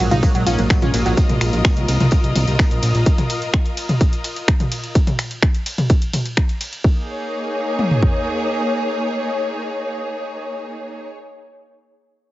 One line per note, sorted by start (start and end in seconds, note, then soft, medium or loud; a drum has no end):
0.00 3.03 G#2 medium
0.00 3.03 F#3 medium
0.00 3.03 A#3 medium
0.00 0.62 D#4 medium
0.00 4.95 F4 medium
0.00 0.31 G#4 medium
0.00 4.95 A#4 medium
0.00 4.95 D#5 medium
0.11 0.21 A#1 medium
0.11 0.19 D#4 loud
0.11 0.17 F4 loud
0.11 0.17 F5 medium
0.11 snare medium
0.11 closed hi-hat soft
0.11 mid tom loud
0.23 0.31 F#3 medium
0.23 0.29 A#3 medium
0.23 0.29 A#4 medium
0.23 kick loud
0.23 closed hi-hat medium
0.23 tambourine medium
0.35 0.44 A#1 medium
0.35 0.43 F#3 medium
0.35 0.41 F#4 medium
0.35 0.41 F#5 medium
0.35 closed hi-hat soft
0.46 0.56 A#1 loud
0.46 0.55 C#4 loud
0.46 0.53 F4 loud
0.46 0.53 F5 medium
0.46 open hi-hat loud
0.46 ride medium
0.46 tambourine medium
0.58 0.68 A#1 medium
0.58 0.67 F#3 medium
0.58 0.64 A#3 medium
0.58 0.64 A#4 medium
0.58 closed hi-hat soft
0.70 0.79 F#3 medium
0.70 0.76 F#4 medium
0.70 0.76 F#5 medium
0.70 finger snap loud
0.70 kick loud
0.70 snare loud
0.70 closed hi-hat medium
0.70 tambourine medium
0.82 0.92 A#1 medium
0.82 0.90 C#4 loud
0.82 0.88 F4 loud
0.82 0.88 F5 medium
0.82 closed hi-hat soft
0.82 mid tom loud
0.94 1.04 A#1 loud
0.94 1.02 F#3 medium
0.94 1.00 A#3 medium
0.94 1.00 A#4 medium
0.94 open hi-hat loud
0.94 ride medium
0.94 tambourine medium
1.05 1.15 A#1 medium
1.05 1.14 F#3 medium
1.05 1.12 F#4 medium
1.05 1.12 F#5 medium
1.05 snare medium
1.05 closed hi-hat soft
1.17 kick loud
1.17 closed hi-hat medium
1.17 tambourine medium
1.29 1.39 A#1 medium
1.29 closed hi-hat soft
1.29 mid tom loud
1.41 1.51 A#1 loud
1.41 finger snap medium
1.41 open hi-hat loud
1.41 ride medium
1.41 tambourine medium
1.53 1.63 A#1 medium
1.53 closed hi-hat soft
1.65 finger snap loud
1.65 kick loud
1.65 snare loud
1.65 closed hi-hat medium
1.65 tambourine medium
1.77 1.86 C2 medium
1.77 closed hi-hat soft
1.88 1.98 C2 loud
1.88 open hi-hat medium
1.88 ride medium
1.88 tambourine medium
2.00 2.10 C2 medium
2.00 snare soft
2.00 closed hi-hat soft
2.00 mid tom loud
2.11 kick loud
2.11 closed hi-hat medium
2.11 tambourine medium
2.24 2.33 C2 medium
2.24 closed hi-hat soft
2.35 2.45 C2 loud
2.35 open hi-hat loud
2.35 mid tom medium
2.35 ride medium
2.35 tambourine medium
2.47 2.57 C2 medium
2.47 snare soft
2.47 closed hi-hat soft
2.59 finger snap loud
2.59 kick loud
2.59 snare loud
2.59 closed hi-hat medium
2.59 tambourine medium
2.71 2.81 A#1 medium
2.71 closed hi-hat soft
2.82 2.93 A#1 loud
2.82 snare soft
2.82 open hi-hat medium
2.82 ride medium
2.82 tambourine medium
2.94 3.04 A#1 medium
2.94 snare medium
2.94 closed hi-hat soft
3.06 kick loud
3.06 closed hi-hat medium
3.18 closed hi-hat soft
3.18 mid tom loud
3.30 open hi-hat loud
3.30 ride medium
3.42 closed hi-hat soft
3.54 finger snap loud
3.54 kick loud
3.54 closed hi-hat medium
3.66 closed hi-hat soft
3.77 open hi-hat medium
3.77 ride medium
3.89 closed hi-hat soft
3.89 mid tom loud
4.01 kick loud
4.01 closed hi-hat medium
4.13 closed hi-hat soft
4.24 open hi-hat loud
4.24 ride medium
4.36 closed hi-hat soft
4.48 finger snap loud
4.48 kick loud
4.48 closed hi-hat medium
4.60 closed hi-hat soft
4.60 mid tom loud
4.72 open hi-hat medium
4.72 ride medium
4.84 closed hi-hat soft
4.95 kick loud
4.95 closed hi-hat medium
5.07 closed hi-hat soft
5.07 mid tom medium
5.19 finger snap medium
5.19 open hi-hat loud
5.19 ride medium
5.31 closed hi-hat soft
5.42 finger snap loud
5.42 kick loud
5.42 closed hi-hat medium
5.55 closed hi-hat soft
5.66 open hi-hat medium
5.66 ride medium
5.78 closed hi-hat soft
5.78 mid tom medium
5.90 kick loud
5.90 closed hi-hat medium
6.02 closed hi-hat soft
6.13 open hi-hat loud
6.13 mid tom medium
6.13 ride medium
6.26 closed hi-hat soft
6.37 finger snap loud
6.37 kick loud
6.37 closed hi-hat medium
6.49 closed hi-hat soft
6.61 open hi-hat medium
6.61 ride medium
6.73 closed hi-hat soft
6.84 10.94 A#3 medium
6.84 kick loud
6.92 11.01 D#4 medium
6.99 11.08 G#4 medium
7.06 11.15 C#5 medium
7.79 mid tom medium
7.91 floor tom medium
8.03 kick medium